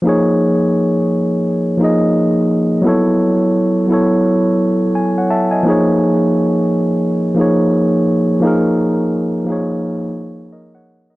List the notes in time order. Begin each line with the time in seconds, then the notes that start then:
0.02 F3 A#3 D#4
0.07 G#4 C#5
1.77 F3 A#3 D#4
1.83 G#4 D#5
2.82 F#3 B3 E4
2.87 A4 C#5
3.87 F#3 B3 E4
3.92 A4 C#5
4.95 G#5
5.18 C#5 F#5
5.30 E5 A5
5.51 D#5 G#5
5.63 F3 A#3 D#4
5.69 G#4 C#5
7.34 F3 A#3 D#4
7.40 G#4 C#5
8.40 F3 A#3 D#4
8.45 G#4 A#4
9.45 F3 A#3 D#4
9.50 G#4 C#5
10.53 A#4 D#5
10.75 C#5 F#5
11.10 A#4 D#5